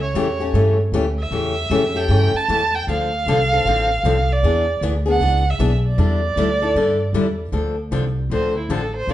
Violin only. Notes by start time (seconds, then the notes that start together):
0.02 C#5
1.19 E5
1.96 G5
2.36 A5
2.75 G5
2.90 F5
4.32 D5
5.10 F#5
5.50 E5
5.87 D5
8.33 C5
8.58 E4
8.72 A4
8.96 C5
9.10 D5